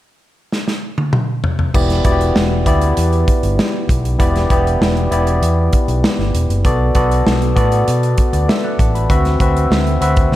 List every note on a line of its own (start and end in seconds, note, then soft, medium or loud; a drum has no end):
0.52 snare medium
0.68 snare soft
0.98 high tom medium
1.13 mid tom medium
1.44 floor tom medium
1.59 floor tom medium
1.74 1.99 E1 medium
1.74 1.97 B3 medium
1.74 1.97 E4 medium
1.74 1.97 G4 medium
1.74 1.97 D5 medium
1.74 kick medium
1.74 crash medium
1.90 snare soft
1.90 closed hi-hat soft
2.04 2.30 E1 medium
2.04 2.49 B3 medium
2.04 2.49 E4 medium
2.04 2.12 F#4 medium
2.04 2.50 D5 medium
2.04 kick medium
2.04 closed hi-hat medium
2.12 2.53 G4 medium
2.21 closed hi-hat soft
2.36 2.60 E1 loud
2.36 snare loud
2.66 2.91 D2 medium
2.66 3.55 B3 medium
2.66 3.55 E4 medium
2.66 3.55 G4 medium
2.66 3.55 D5 medium
2.66 kick medium
2.66 closed hi-hat medium
2.81 closed hi-hat soft
2.97 3.22 E2 medium
2.97 closed hi-hat medium
3.13 closed hi-hat soft
3.28 kick medium
3.28 closed hi-hat medium
3.43 3.55 G1 medium
3.43 closed hi-hat soft
3.59 snare loud
3.89 4.14 B1 medium
3.89 kick medium
3.89 closed hi-hat medium
4.05 closed hi-hat soft
4.19 4.44 E1 loud
4.19 4.41 B3 medium
4.19 4.42 E4 medium
4.19 4.42 G4 medium
4.19 4.42 D5 medium
4.19 kick loud
4.19 closed hi-hat medium
4.36 snare soft
4.36 closed hi-hat soft
4.50 4.75 E1 medium
4.50 4.95 B3 medium
4.50 4.95 E4 medium
4.50 4.95 G4 medium
4.50 4.95 D5 medium
4.50 kick medium
4.50 closed hi-hat medium
4.67 closed hi-hat soft
4.81 5.05 E1 medium
4.81 snare loud
4.97 closed hi-hat soft
5.11 5.36 E1 medium
5.11 6.00 B3 medium
5.11 6.00 E4 medium
5.11 6.00 G4 medium
5.11 6.00 D5 medium
5.11 closed hi-hat medium
5.27 closed hi-hat soft
5.42 5.67 E2 medium
5.42 closed hi-hat medium
5.73 kick medium
5.73 closed hi-hat medium
5.88 6.00 B1 medium
5.88 closed hi-hat soft
6.04 snare loud
6.19 6.31 G1 medium
6.19 snare soft
6.34 6.47 E1 medium
6.34 closed hi-hat medium
6.49 6.62 F#1 medium
6.49 closed hi-hat soft
6.64 6.89 B1 medium
6.64 6.87 B3 medium
6.64 6.87 F#4 medium
6.64 6.87 A4 medium
6.64 6.87 D5 loud
6.64 kick medium
6.64 closed hi-hat medium
6.95 7.20 B1 medium
6.95 7.39 B3 medium
6.95 7.40 F#4 medium
6.95 7.40 A4 medium
6.95 7.40 D5 medium
6.95 kick medium
6.95 closed hi-hat medium
7.11 closed hi-hat soft
7.27 7.51 B1 medium
7.27 snare loud
7.42 closed hi-hat soft
7.55 7.81 A2 medium
7.55 8.44 B3 medium
7.55 8.44 F#4 medium
7.55 8.45 A4 medium
7.55 8.18 D5 medium
7.55 kick medium
7.55 closed hi-hat medium
7.72 closed hi-hat soft
7.88 8.12 B2 loud
7.88 closed hi-hat medium
8.03 closed hi-hat soft
8.18 kick medium
8.18 closed hi-hat medium
8.33 8.45 D2 medium
8.33 8.48 B4 soft
8.33 8.48 D5 medium
8.33 closed hi-hat soft
8.49 8.63 E5 medium
8.49 snare loud
8.64 8.79 D5 medium
8.64 8.79 F#5 medium
8.79 9.04 A1 medium
8.79 8.94 F#5 soft
8.79 8.94 A5 medium
8.79 kick medium
8.79 closed hi-hat medium
8.95 9.24 B5 medium
8.95 closed hi-hat soft
9.10 9.34 D2 medium
9.10 9.32 C4 medium
9.10 9.32 F#4 medium
9.10 9.32 B4 medium
9.10 9.32 E5 medium
9.10 kick loud
9.10 closed hi-hat medium
9.25 snare soft
9.25 closed hi-hat soft
9.40 9.65 D2 medium
9.40 9.85 C4 medium
9.40 9.85 F#4 medium
9.40 9.85 B4 medium
9.40 9.85 E5 medium
9.40 kick medium
9.40 closed hi-hat medium
9.57 closed hi-hat soft
9.70 9.95 D2 medium
9.70 snare loud
9.87 closed hi-hat soft
10.01 10.26 D2 medium
10.01 10.36 C4 medium
10.01 10.36 F#4 medium
10.01 10.36 B4 medium
10.01 10.36 E5 medium
10.01 closed hi-hat medium
10.16 kick medium
10.16 closed hi-hat soft
10.32 10.36 D3 medium
10.32 snare medium